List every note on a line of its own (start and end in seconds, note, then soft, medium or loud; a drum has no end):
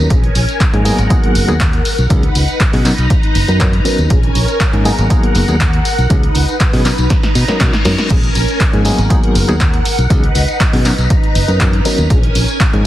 0.10 0.28 A#1 medium
0.10 0.18 F3 medium
0.10 0.18 G#3 medium
0.10 0.18 A#3 medium
0.10 0.85 C#4 medium
0.10 0.18 C#4 medium
0.10 0.18 G#4 medium
0.10 2.08 A#4 medium
0.10 0.85 G#5 medium
0.10 kick loud
0.10 closed hi-hat medium
0.24 closed hi-hat soft
0.35 0.44 A#1 medium
0.35 open hi-hat loud
0.35 tambourine medium
0.48 closed hi-hat soft
0.48 tambourine soft
0.60 kick loud
0.60 clap loud
0.60 closed hi-hat medium
0.73 0.90 G#2 medium
0.73 0.80 F3 medium
0.73 0.80 G#3 medium
0.73 0.80 A#3 medium
0.73 0.80 C#4 medium
0.73 0.80 G#4 medium
0.73 closed hi-hat soft
0.85 1.07 F#3 medium
0.85 1.07 A#3 medium
0.85 1.07 B3 medium
0.85 1.07 D#4 medium
0.85 1.08 G#4 loud
0.85 2.09 F#5 medium
0.85 open hi-hat loud
0.85 tambourine loud
0.98 1.06 G#1 medium
0.98 closed hi-hat soft
0.98 tambourine soft
1.10 1.45 F#3 medium
1.10 1.45 A#3 medium
1.10 1.45 B3 medium
1.10 1.45 D#4 medium
1.10 1.45 G#4 loud
1.10 kick loud
1.10 closed hi-hat medium
1.10 tambourine soft
1.24 closed hi-hat soft
1.35 1.44 F#1 loud
1.35 open hi-hat loud
1.35 tambourine medium
1.48 1.79 D#2 medium
1.48 1.55 F#3 medium
1.48 1.55 A#3 medium
1.48 1.55 B3 medium
1.48 1.55 D#4 medium
1.48 1.55 G#4 loud
1.48 closed hi-hat soft
1.48 tambourine medium
1.60 kick loud
1.60 clap loud
1.60 closed hi-hat medium
1.73 closed hi-hat soft
1.85 open hi-hat loud
1.85 tambourine medium
1.98 2.06 B1 medium
1.98 closed hi-hat soft
1.98 tambourine medium
2.10 2.28 C#2 loud
2.10 2.22 F#3 medium
2.10 2.22 B3 medium
2.10 2.22 C#4 medium
2.10 2.22 D#4 medium
2.10 4.08 D#4 medium
2.10 2.23 G#4 medium
2.10 2.84 B4 medium
2.10 2.85 F#5 medium
2.10 kick loud
2.10 closed hi-hat medium
2.23 closed hi-hat soft
2.35 2.44 C#2 medium
2.35 open hi-hat loud
2.35 tambourine medium
2.48 closed hi-hat soft
2.48 tambourine soft
2.60 kick loud
2.60 clap loud
2.60 closed hi-hat medium
2.73 2.90 B2 medium
2.73 2.80 F#3 medium
2.73 2.80 B3 medium
2.73 2.80 C#4 medium
2.73 2.80 D#4 medium
2.73 2.80 G#4 medium
2.73 open hi-hat medium
2.85 2.93 F#3 medium
2.85 2.93 B3 medium
2.85 2.93 C#4 medium
2.85 2.93 D#4 medium
2.85 2.93 A#4 loud
2.85 4.09 B4 medium
2.85 4.09 A#5 medium
2.85 clap medium
2.85 open hi-hat loud
2.85 tambourine medium
2.98 3.06 B1 medium
2.98 closed hi-hat soft
2.98 tambourine soft
3.10 kick loud
3.10 closed hi-hat medium
3.10 tambourine soft
3.23 closed hi-hat soft
3.35 3.44 F#1 medium
3.35 open hi-hat loud
3.35 tambourine medium
3.48 3.79 F#2 medium
3.48 3.58 F#3 medium
3.48 3.58 B3 medium
3.48 3.59 C#4 medium
3.48 3.59 D#4 medium
3.48 3.59 A#4 medium
3.48 closed hi-hat soft
3.48 tambourine medium
3.60 3.72 F#3 medium
3.60 3.72 B3 medium
3.60 3.72 C#4 medium
3.60 3.72 D#4 medium
3.60 3.73 A#4 medium
3.60 kick loud
3.60 clap loud
3.60 closed hi-hat medium
3.73 closed hi-hat soft
3.85 4.07 F#3 medium
3.85 4.07 B3 medium
3.85 4.07 C#4 medium
3.85 4.08 D#4 medium
3.85 4.08 A#4 medium
3.85 muted fingered electric bass stroke soft
3.85 open hi-hat loud
3.85 tambourine medium
3.98 4.07 D#2 medium
3.98 closed hi-hat soft
3.98 tambourine medium
4.10 4.28 A#1 loud
4.10 4.18 F3 medium
4.10 4.18 G#3 medium
4.10 4.18 A#3 medium
4.10 4.18 C#4 medium
4.10 4.85 C#4 medium
4.10 4.18 G#4 medium
4.10 6.08 A#4 medium
4.10 4.85 G#5 medium
4.10 kick loud
4.10 closed hi-hat loud
4.23 closed hi-hat soft
4.35 4.44 A#1 medium
4.35 open hi-hat loud
4.35 tambourine medium
4.48 closed hi-hat soft
4.48 tambourine medium
4.60 kick loud
4.60 clap loud
4.60 closed hi-hat medium
4.73 4.90 G#2 medium
4.73 4.80 F3 medium
4.73 4.80 G#3 medium
4.73 4.80 A#3 medium
4.73 4.80 C#4 medium
4.73 4.80 G#4 medium
4.73 closed hi-hat soft
4.85 5.07 F#3 medium
4.85 5.07 A#3 medium
4.85 5.07 B3 medium
4.85 5.08 D#4 medium
4.85 5.08 G#4 loud
4.85 6.83 F#5 medium
4.85 open hi-hat loud
4.85 tambourine medium
4.98 5.06 G#1 medium
4.98 closed hi-hat soft
4.98 tambourine medium
5.10 5.45 F#3 medium
5.10 5.45 A#3 medium
5.10 5.45 B3 medium
5.10 5.45 D#4 medium
5.10 5.46 G#4 loud
5.10 kick loud
5.10 closed hi-hat medium
5.10 tambourine soft
5.23 closed hi-hat soft
5.35 5.44 F#1 medium
5.35 open hi-hat loud
5.35 tambourine medium
5.48 5.79 D#2 medium
5.48 5.55 F#3 medium
5.48 5.55 A#3 medium
5.48 5.55 B3 medium
5.48 5.55 D#4 medium
5.48 5.55 G#4 loud
5.48 closed hi-hat soft
5.48 tambourine medium
5.60 kick loud
5.60 clap loud
5.60 closed hi-hat medium
5.73 closed hi-hat soft
5.85 open hi-hat loud
5.85 tambourine medium
5.98 6.06 B1 medium
5.98 closed hi-hat soft
5.98 tambourine soft
6.10 6.22 F#3 medium
6.10 6.22 B3 medium
6.10 6.22 C#4 medium
6.10 6.22 D#4 medium
6.10 6.84 D#4 medium
6.10 6.23 G#4 loud
6.10 8.08 B4 medium
6.10 kick loud
6.10 closed hi-hat loud
6.10 tambourine soft
6.23 closed hi-hat soft
6.35 6.44 C#2 medium
6.35 open hi-hat loud
6.35 tambourine medium
6.48 closed hi-hat soft
6.48 tambourine soft
6.60 kick loud
6.60 clap loud
6.60 closed hi-hat medium
6.60 tambourine soft
6.73 6.90 B2 medium
6.73 6.80 F#3 medium
6.73 6.80 B3 medium
6.73 6.80 C#4 medium
6.73 6.80 D#4 medium
6.73 6.80 G#4 medium
6.73 open hi-hat medium
6.85 6.93 F#3 medium
6.85 6.93 B3 medium
6.85 6.93 C#4 medium
6.85 8.09 D#4 medium
6.85 6.93 D#4 medium
6.85 6.93 A#4 loud
6.85 8.09 A#5 medium
6.85 clap medium
6.85 open hi-hat loud
6.85 tambourine medium
6.98 7.06 B1 medium
6.98 closed hi-hat soft
6.98 tambourine medium
7.10 kick loud
7.10 snare medium
7.10 closed hi-hat medium
7.10 tambourine soft
7.10 reverse cymbal medium
7.23 snare medium
7.23 closed hi-hat soft
7.35 7.44 B2 medium
7.35 open hi-hat loud
7.35 tambourine medium
7.48 7.58 F#3 medium
7.48 7.58 B3 medium
7.48 7.59 C#4 medium
7.48 7.59 D#4 medium
7.48 7.59 A#4 medium
7.48 muted fingered electric bass stroke soft
7.48 snare medium
7.48 closed hi-hat soft
7.48 tambourine soft
7.60 7.69 B2 medium
7.60 7.73 C#4 medium
7.60 7.73 D#4 medium
7.60 kick loud
7.60 snare medium
7.60 clap loud
7.60 closed hi-hat medium
7.60 tambourine soft
7.73 snare medium
7.73 closed hi-hat soft
7.85 7.94 F#2 loud
7.85 8.07 F#3 medium
7.85 8.07 B3 medium
7.85 8.08 C#4 medium
7.85 8.08 D#4 medium
7.85 8.08 A#4 medium
7.85 snare loud
7.85 open hi-hat loud
7.85 tambourine medium
7.98 snare medium
7.98 closed hi-hat soft
7.98 tambourine soft
8.10 8.28 A#1 loud
8.10 8.18 F3 medium
8.10 8.18 G#3 medium
8.10 8.18 A#3 medium
8.10 8.85 C#4 medium
8.10 8.18 C#4 medium
8.10 8.18 G#4 medium
8.10 8.84 A#4 medium
8.10 8.85 G#5 medium
8.10 kick loud
8.10 closed hi-hat medium
8.10 crash medium
8.23 closed hi-hat soft
8.35 8.44 A#1 medium
8.35 open hi-hat loud
8.35 tambourine medium
8.48 closed hi-hat soft
8.48 tambourine soft
8.60 kick loud
8.60 clap loud
8.60 closed hi-hat medium
8.73 8.90 G#2 medium
8.73 8.80 F3 medium
8.73 8.80 G#3 medium
8.73 8.80 A#3 medium
8.73 8.80 C#4 medium
8.73 8.81 G#4 medium
8.73 closed hi-hat soft
8.85 9.07 F#3 medium
8.85 9.07 A#3 medium
8.85 9.07 B3 medium
8.85 9.08 D#4 medium
8.85 9.08 G#4 loud
8.85 10.09 A#4 medium
8.85 10.83 F#5 medium
8.85 open hi-hat loud
8.85 tambourine medium
8.98 9.06 G#1 medium
8.98 closed hi-hat soft
8.98 tambourine soft
9.10 9.45 F#3 medium
9.10 9.45 A#3 medium
9.10 9.45 B3 medium
9.10 9.45 D#4 medium
9.10 9.45 G#4 loud
9.10 kick loud
9.10 closed hi-hat loud
9.10 tambourine soft
9.24 closed hi-hat soft
9.35 9.44 F#1 medium
9.35 open hi-hat loud
9.35 tambourine medium
9.48 9.79 D#2 medium
9.48 9.55 F#3 medium
9.48 9.55 A#3 medium
9.48 9.55 B3 medium
9.48 9.55 D#4 medium
9.48 9.55 G#4 loud
9.48 closed hi-hat soft
9.48 tambourine soft
9.60 kick loud
9.60 clap loud
9.60 closed hi-hat medium
9.60 tambourine soft
9.74 closed hi-hat soft
9.85 open hi-hat loud
9.85 tambourine loud
9.98 10.06 B1 medium
9.98 closed hi-hat soft
9.98 tambourine medium
10.10 10.28 C#2 loud
10.10 10.22 F#3 medium
10.10 10.22 B3 medium
10.10 10.22 C#4 medium
10.10 10.84 D#4 medium
10.10 10.23 D#4 medium
10.10 10.23 G#4 medium
10.10 10.84 B4 medium
10.10 kick loud
10.10 closed hi-hat medium
10.10 tambourine soft
10.24 closed hi-hat soft
10.35 10.44 C#2 medium
10.35 open hi-hat loud
10.35 tambourine medium
10.48 closed hi-hat soft
10.48 tambourine medium
10.60 kick loud
10.60 clap loud
10.60 closed hi-hat medium
10.60 tambourine soft
10.73 10.90 B2 medium
10.73 10.80 F#3 medium
10.73 10.80 B3 medium
10.73 10.80 C#4 medium
10.73 10.80 D#4 medium
10.73 10.80 G#4 medium
10.73 open hi-hat medium
10.85 10.93 F#3 medium
10.85 10.93 B3 medium
10.85 10.93 C#4 medium
10.85 12.09 D#4 medium
10.85 10.93 D#4 medium
10.85 10.93 A#4 loud
10.85 12.09 B4 medium
10.85 12.09 A#5 medium
10.85 clap medium
10.85 open hi-hat loud
10.85 tambourine loud
10.98 11.06 B1 loud
10.98 closed hi-hat soft
10.98 tambourine medium
11.10 kick loud
11.10 closed hi-hat medium
11.24 closed hi-hat soft
11.35 11.44 F#1 medium
11.35 open hi-hat loud
11.35 tambourine medium
11.48 11.79 F#2 medium
11.48 11.58 F#3 medium
11.48 11.58 B3 medium
11.48 11.58 C#4 medium
11.48 11.59 D#4 medium
11.48 11.59 A#4 medium
11.48 closed hi-hat soft
11.48 tambourine soft
11.60 11.72 F#3 medium
11.60 11.72 B3 medium
11.60 11.72 C#4 medium
11.60 11.73 D#4 medium
11.60 11.73 A#4 medium
11.60 kick loud
11.60 clap loud
11.60 closed hi-hat medium
11.60 tambourine soft
11.73 closed hi-hat soft
11.85 12.07 F#3 medium
11.85 12.07 B3 medium
11.85 12.07 C#4 medium
11.85 12.08 D#4 medium
11.85 12.08 A#4 medium
11.85 muted fingered electric bass stroke soft
11.85 open hi-hat loud
11.85 tambourine medium
11.98 12.06 D#2 medium
11.98 tambourine medium
12.10 12.28 A#1 medium
12.10 12.18 F3 medium
12.10 12.18 G#3 medium
12.10 12.18 A#3 medium
12.10 12.85 C#4 medium
12.10 12.18 C#4 medium
12.10 12.18 G#4 medium
12.10 12.87 A#4 medium
12.10 12.84 G#5 medium
12.10 kick loud
12.10 closed hi-hat medium
12.10 tambourine soft
12.23 closed hi-hat soft
12.35 12.44 A#1 medium
12.35 open hi-hat loud
12.35 tambourine loud
12.48 closed hi-hat soft
12.48 tambourine medium
12.60 kick loud
12.60 clap loud
12.60 closed hi-hat medium
12.73 12.87 G#2 medium
12.73 12.80 F3 medium
12.73 12.80 G#3 medium
12.73 12.80 A#3 medium
12.73 12.80 C#4 medium
12.73 12.81 G#4 medium
12.73 closed hi-hat soft